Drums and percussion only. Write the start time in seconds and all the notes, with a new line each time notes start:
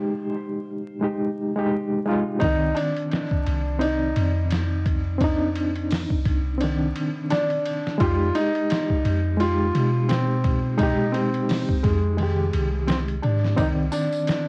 2.41 kick, ride
2.77 ride
2.96 ride
3.11 snare, ride
3.31 kick
3.46 ride
3.81 ride
4.16 ride
4.50 snare, ride
4.86 kick, ride
5.21 kick, ride
5.56 ride
5.76 ride
5.91 snare, open hi-hat
6.10 kick
6.25 kick, ride
6.61 ride
6.96 ride
7.30 snare, ride
7.50 ride
7.65 ride
7.87 snare
8.00 kick, ride
8.35 ride
8.55 ride
8.70 snare, ride
8.90 kick
9.05 ride
9.40 ride
9.75 ride
10.09 snare, ride
10.44 kick, ride
10.79 kick, ride
11.14 ride
11.34 ride
11.49 snare, open hi-hat
11.69 kick
11.84 kick, ride
12.18 ride
12.53 ride
12.88 snare, ride
13.08 ride
13.23 ride
13.45 snare
13.58 kick, ride, tambourine
13.92 ride, tambourine
14.13 ride, tambourine
14.27 snare, ride, tambourine